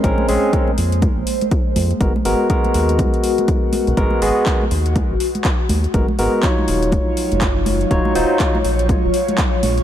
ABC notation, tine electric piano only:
X:1
M:4/4
L:1/8
Q:"Swing 16ths" 1/4=122
K:Abmix
V:1 name="Tine electric piano"
[A,CDB] [A,CDA] [A,DB] z4 z | [A,_CGB] [A,CGB] [A,CGB]6 | [A,_CGB] [A,CGA] z6 | [A,_CGB] [A,CGB] [G,EFd]6 |
[G,EFd] [G,EFc] [G,E] z4 z |]